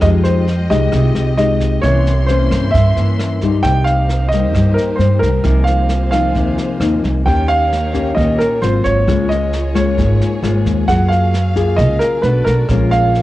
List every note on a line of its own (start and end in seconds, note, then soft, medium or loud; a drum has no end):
0.01 0.66 F2 medium
0.01 0.90 F3 soft
0.01 0.47 G#3 medium
0.01 1.82 G#3 medium
0.01 0.47 D#4 soft
0.01 1.82 F4 medium
0.01 0.48 G4 medium
0.01 1.83 G4 medium
0.01 0.07 D#5 medium
0.01 1.83 D#5 medium
0.01 kick medium
0.01 cross-stick medium
0.01 snare soft
0.24 0.71 C5 medium
0.24 snare soft
0.48 snare soft
0.70 0.91 C2 medium
0.70 1.35 G#3 medium
0.70 1.35 D#4 medium
0.70 1.35 G4 medium
0.70 1.34 D#5 medium
0.70 kick soft
0.70 snare soft
0.92 1.14 C2 medium
0.92 1.81 C3 soft
0.92 kick soft
0.92 cross-stick medium
0.92 snare soft
1.15 1.79 C2 medium
1.15 snare soft
1.38 1.80 G#3 medium
1.38 1.80 D#4 soft
1.38 1.80 G4 medium
1.38 1.85 D#5 medium
1.38 snare soft
1.60 kick soft
1.60 snare soft
1.81 2.47 C2 medium
1.81 2.72 C3 medium
1.81 2.13 E3 soft
1.81 3.62 A#3 medium
1.81 2.13 A#3 soft
1.81 3.62 C#4 medium
1.81 2.13 C#4 medium
1.81 3.62 E4 medium
1.81 2.29 C#5 medium
1.81 3.62 C6 medium
1.81 kick medium
1.81 cross-stick medium
1.81 snare soft
2.06 snare soft
2.27 2.74 E3 medium
2.27 2.74 A#3 soft
2.27 2.74 C5 medium
2.27 snare soft
2.31 2.75 C#4 medium
2.51 2.72 G2 medium
2.51 kick soft
2.51 cross-stick soft
2.51 snare soft
2.71 2.95 G2 medium
2.71 3.63 G2 soft
2.71 3.36 E5 medium
2.71 kick medium
2.71 snare soft
2.97 3.61 G2 medium
2.97 3.39 E3 medium
2.97 3.39 A#3 medium
2.97 3.40 C#4 medium
2.97 snare soft
3.19 cross-stick medium
3.19 snare soft
3.41 4.08 G3 medium
3.41 4.09 A#3 soft
3.41 4.09 D#4 medium
3.41 kick soft
3.41 snare soft
3.63 4.55 C2 medium
3.63 4.53 C3 soft
3.63 12.20 A#3 medium
3.63 5.44 D#4 medium
3.63 5.44 G4 medium
3.63 5.44 C5 medium
3.63 3.85 G5 medium
3.63 kick medium
3.63 cross-stick medium
3.63 snare soft
3.84 4.28 F5 medium
3.84 snare soft
4.09 snare soft
4.28 4.97 G3 soft
4.28 4.77 D#5 medium
4.28 kick soft
4.28 snare soft
4.33 4.97 A#3 medium
4.33 4.97 D#4 medium
4.53 5.43 G2 soft
4.53 4.76 G2 medium
4.53 kick medium
4.53 cross-stick medium
4.53 snare soft
4.74 4.97 A#4 medium
4.74 snare soft
4.96 5.21 G2 medium
4.96 5.29 G3 soft
4.96 5.21 C5 medium
4.96 snare soft
5.00 5.29 A#3 soft
5.00 5.29 D#4 medium
5.19 5.44 C2 medium
5.19 5.63 A#4 medium
5.19 kick soft
5.19 snare soft
5.44 6.35 C2 medium
5.44 6.33 C3 medium
5.44 5.90 F3 soft
5.44 5.90 A#3 soft
5.44 5.90 D#4 medium
5.44 7.25 F4 medium
5.44 7.25 G#4 medium
5.44 7.25 C5 medium
5.44 kick soft
5.44 cross-stick medium
5.44 snare soft
5.64 6.09 F5 medium
5.64 snare soft
5.89 snare soft
6.11 6.77 F3 medium
6.11 6.77 A#3 medium
6.11 6.78 D#4 medium
6.11 6.99 F5 medium
6.11 kick soft
6.11 cross-stick soft
6.11 snare soft
6.35 6.57 D#2 medium
6.35 7.24 C3 medium
6.35 kick medium
6.35 snare soft
6.58 snare soft
6.80 7.02 D#2 medium
6.80 7.23 F3 soft
6.80 7.23 A#3 soft
6.80 7.23 D#4 medium
6.80 cross-stick medium
6.80 snare soft
7.04 7.25 C2 medium
7.04 kick soft
7.04 snare soft
7.26 8.13 D#2 medium
7.26 8.14 D#3 soft
7.26 7.71 A#3 soft
7.26 7.72 C#4 soft
7.26 8.61 D#4 medium
7.26 7.72 G4 medium
7.26 8.61 G4 medium
7.26 8.61 C#5 medium
7.26 7.49 G5 medium
7.26 kick medium
7.26 cross-stick medium
7.26 snare soft
7.48 8.13 F5 loud
7.48 snare soft
7.73 snare soft
7.93 8.58 A#3 medium
7.93 8.58 C#4 medium
7.93 8.58 G4 medium
7.93 kick soft
7.93 snare soft
8.15 8.38 D#2 medium
8.15 8.59 A#2 medium
8.15 8.37 D#5 medium
8.15 kick medium
8.15 cross-stick medium
8.15 snare soft
8.38 8.60 A#4 medium
8.38 snare soft
8.61 8.83 G#1 medium
8.61 9.04 F#3 soft
8.61 9.04 C4 soft
8.61 10.85 F4 medium
8.61 9.04 F4 medium
8.61 8.83 C5 medium
8.61 9.07 C5 medium
8.61 snare soft
8.84 9.06 G#1 medium
8.84 9.31 C#5 medium
8.84 kick soft
8.84 snare soft
9.07 9.99 C#2 medium
9.07 9.95 C#3 soft
9.07 9.53 G#3 soft
9.07 9.53 A#3 soft
9.07 9.53 F4 medium
9.07 12.21 G#4 medium
9.07 10.86 C#5 medium
9.07 kick medium
9.07 cross-stick medium
9.07 snare soft
9.29 9.71 D#5 medium
9.29 snare soft
9.53 snare soft
9.74 10.39 G#3 medium
9.74 10.39 A#3 medium
9.74 10.39 F4 medium
9.74 10.61 C#5 medium
9.74 kick soft
9.74 cross-stick medium
9.74 snare soft
9.98 10.19 G#1 medium
9.98 10.86 G#2 medium
9.98 kick medium
9.98 snare soft
10.21 snare soft
10.42 10.64 G#1 medium
10.42 10.84 G#3 soft
10.42 10.84 A#3 soft
10.42 10.85 F4 medium
10.42 cross-stick medium
10.42 snare soft
10.66 10.87 D#2 medium
10.66 kick soft
10.66 snare soft
10.87 11.80 F#2 medium
10.87 11.76 F#3 soft
10.87 12.22 F#3 medium
10.87 11.33 A#3 soft
10.87 11.33 F4 soft
10.87 11.33 G#4 medium
10.87 12.23 F5 medium
10.87 11.11 F#5 medium
10.87 kick medium
10.87 cross-stick medium
10.87 snare soft
11.08 11.73 F5 medium
11.08 snare soft
11.34 snare soft
11.55 12.20 A#3 medium
11.55 12.20 F4 medium
11.55 12.20 G#4 medium
11.55 kick soft
11.55 snare soft
11.76 11.99 C#2 medium
11.76 12.22 C#3 soft
11.76 12.01 D#5 medium
11.76 kick medium
11.76 cross-stick medium
11.76 snare soft
11.99 12.21 A#4 medium
11.99 snare soft
12.22 12.44 B1 medium
12.22 12.66 A3 soft
12.22 12.68 B3 medium
12.22 12.66 D4 soft
12.22 12.68 F#4 medium
12.22 12.66 F#4 soft
12.22 12.68 A4 medium
12.22 12.46 B4 medium
12.22 12.68 D5 medium
12.22 snare soft
12.45 12.67 B1 medium
12.45 12.92 A#4 medium
12.45 kick soft
12.45 snare soft
12.68 13.22 A#1 medium
12.68 13.22 A#2 soft
12.68 13.22 G#3 soft
12.68 13.22 A#3 medium
12.68 13.22 C#4 medium
12.68 13.22 F4 medium
12.68 13.22 A#4 medium
12.68 13.22 C#5 medium
12.68 kick medium
12.68 cross-stick medium
12.68 snare soft
12.91 13.22 F5 medium
12.91 snare soft
13.15 snare soft